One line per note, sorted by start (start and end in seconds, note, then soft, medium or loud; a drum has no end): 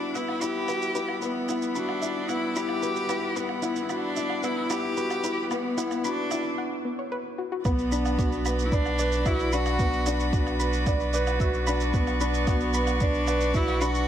0.00 6.58 B1 medium
0.00 6.54 G3 medium
0.00 0.16 B3 medium
0.00 0.17 D4 loud
0.00 0.42 E4 medium
0.00 6.54 E4 medium
0.00 0.69 F#4 medium
0.00 6.54 F#5 medium
0.00 6.54 B5 medium
0.15 0.31 B3 medium
0.15 0.43 E4 loud
0.15 0.22 F#5 medium
0.15 shaker soft
0.29 low woodblock medium
0.42 0.67 E4 medium
0.42 1.22 G4 loud
0.42 0.48 B5 medium
0.42 shaker medium
0.68 0.95 F#4 medium
0.68 0.78 B4 medium
0.68 low woodblock medium
0.68 shaker soft
0.82 shaker soft
0.95 1.21 E4 medium
0.95 1.05 B4 loud
0.95 shaker medium
1.09 low woodblock medium
1.22 1.77 B3 loud
1.22 1.48 B3 medium
1.22 1.32 B4 medium
1.22 shaker soft
1.48 1.75 E4 medium
1.48 1.53 F#5 medium
1.48 low woodblock medium
1.48 shaker medium
1.62 shaker soft
1.75 2.31 D4 loud
1.75 1.91 F#4 medium
1.75 1.82 B5 medium
1.75 shaker soft
1.89 low woodblock medium
2.02 2.28 E4 medium
2.02 2.09 E5 medium
2.02 shaker medium
2.29 2.45 B3 medium
2.29 2.59 E4 loud
2.29 2.36 F#5 medium
2.29 low woodblock medium
2.29 shaker soft
2.56 2.82 E4 loud
2.56 3.39 G4 loud
2.56 2.63 B5 medium
2.56 shaker medium
2.69 low woodblock medium
2.83 3.08 F#4 medium
2.83 2.92 B4 medium
2.83 shaker soft
2.96 shaker soft
3.09 3.35 E4 medium
3.09 3.19 B4 loud
3.09 low woodblock medium
3.09 shaker medium
3.36 3.62 B3 medium
3.36 3.85 B3 loud
3.36 3.46 B4 medium
3.36 shaker soft
3.49 low woodblock medium
3.62 3.88 E4 loud
3.62 3.67 F#5 medium
3.62 shaker medium
3.76 shaker soft
3.83 3.92 E4 medium
3.89 4.46 D4 loud
3.89 4.05 F#4 medium
3.89 3.97 B5 medium
3.89 low woodblock medium
3.89 shaker soft
4.16 4.42 E4 medium
4.16 4.23 E5 medium
4.16 shaker medium
4.30 low woodblock medium
4.43 4.59 B3 medium
4.43 4.72 E4 loud
4.43 4.50 F#5 medium
4.43 shaker soft
4.70 4.96 E4 loud
4.70 5.51 G4 loud
4.70 4.77 B5 medium
4.70 low woodblock medium
4.70 shaker medium
4.97 5.23 F#4 medium
4.97 5.07 B4 medium
4.97 shaker soft
5.11 low woodblock medium
5.11 shaker soft
5.24 5.49 E4 medium
5.24 5.34 B4 loud
5.24 shaker medium
5.51 5.76 B3 medium
5.51 6.06 B3 medium
5.51 5.61 B4 medium
5.51 low woodblock medium
5.51 shaker soft
5.77 6.03 E4 loud
5.77 5.82 F#5 medium
5.77 shaker medium
5.91 low woodblock medium
5.91 shaker soft
6.04 6.58 D4 loud
6.04 6.20 F#4 medium
6.04 6.11 B5 medium
6.04 shaker soft
6.31 6.57 E4 medium
6.31 6.38 E5 medium
6.31 low woodblock medium
6.31 shaker medium
6.58 6.65 F#5 medium
6.85 6.95 B3 medium
6.99 7.05 C#5 medium
7.12 7.18 B4 loud
7.38 7.45 F#4 medium
7.52 7.58 F#4 loud
7.65 14.08 B1 medium
7.65 7.80 B3 medium
7.65 8.67 B3 medium
7.65 14.08 F#4 medium
7.65 7.75 B4 medium
7.65 14.08 B4 medium
7.65 14.08 D5 medium
7.65 11.90 B5 medium
7.65 kick loud
7.65 low woodblock medium
7.65 shaker soft
7.79 shaker soft
7.92 8.17 D4 medium
7.92 7.99 B5 medium
7.92 shaker medium
8.06 low woodblock medium
8.06 shaker soft
8.19 8.44 F#4 medium
8.19 8.23 D5 medium
8.19 kick loud
8.19 shaker soft
8.32 shaker soft
8.46 8.61 B4 medium
8.46 8.55 B5 loud
8.46 low woodblock medium
8.46 shaker medium
8.59 shaker soft
8.65 8.75 E4 medium
8.72 9.29 D4 loud
8.72 8.82 B4 medium
8.72 8.98 D5 medium
8.72 kick loud
8.72 shaker soft
8.86 low woodblock medium
8.86 shaker soft
8.99 9.15 B4 medium
8.99 9.09 D5 loud
8.99 shaker medium
9.12 shaker soft
9.26 9.55 E4 loud
9.26 9.52 F#4 medium
9.26 9.36 E5 medium
9.26 kick loud
9.26 low woodblock medium
9.26 shaker soft
9.39 shaker soft
9.53 9.79 D4 loud
9.53 10.34 F#4 loud
9.53 9.62 B5 loud
9.53 shaker medium
9.66 low woodblock medium
9.66 shaker soft
9.79 9.95 B3 medium
9.79 9.89 B4 medium
9.79 kick loud
9.79 shaker soft
9.93 shaker soft
10.06 10.32 D4 loud
10.06 10.13 B5 medium
10.06 low woodblock medium
10.06 shaker medium
10.20 shaker soft
10.33 10.59 F#4 medium
10.33 10.37 D5 medium
10.33 kick loud
10.33 shaker soft
10.47 low woodblock medium
10.47 shaker soft
10.60 10.75 B4 medium
10.60 10.69 B5 loud
10.60 shaker medium
10.73 shaker soft
10.87 10.96 B4 medium
10.87 11.12 D5 medium
10.87 kick loud
10.87 low woodblock medium
10.87 shaker soft
11.00 shaker soft
11.14 11.29 B4 loud
11.14 11.23 D5 loud
11.14 shaker medium
11.27 low woodblock medium
11.27 shaker soft
11.40 11.66 F#4 loud
11.40 11.50 E5 medium
11.40 kick loud
11.40 shaker soft
11.54 shaker soft
11.67 11.93 D4 loud
11.67 11.77 B5 loud
11.67 low woodblock medium
11.67 shaker medium
11.80 shaker soft
11.94 12.09 B3 medium
11.94 13.04 B3 medium
11.94 12.04 B4 medium
11.94 14.08 C#6 medium
11.94 kick loud
11.94 shaker soft
12.07 low woodblock medium
12.07 shaker soft
12.20 12.46 D4 loud
12.20 12.27 B5 medium
12.20 shaker medium
12.34 shaker soft
12.47 12.73 F#4 medium
12.47 12.51 D5 medium
12.47 kick loud
12.47 low woodblock medium
12.47 shaker soft
12.60 shaker soft
12.74 12.90 B4 medium
12.74 12.84 B5 loud
12.74 shaker medium
12.87 low woodblock medium
12.87 shaker soft
13.01 13.58 D4 loud
13.01 13.11 B4 medium
13.01 13.27 D5 medium
13.01 kick loud
13.01 shaker soft
13.14 shaker soft
13.27 13.43 B4 loud
13.27 13.37 D5 loud
13.27 low woodblock medium
13.27 shaker medium
13.41 shaker soft
13.54 13.84 E4 loud
13.54 13.80 F#4 loud
13.54 13.64 E5 medium
13.54 kick loud
13.54 shaker soft
13.68 low woodblock medium
13.68 shaker soft
13.81 14.07 D4 loud
13.81 14.08 F#4 loud
13.81 13.91 B5 loud
13.81 shaker medium
13.95 shaker soft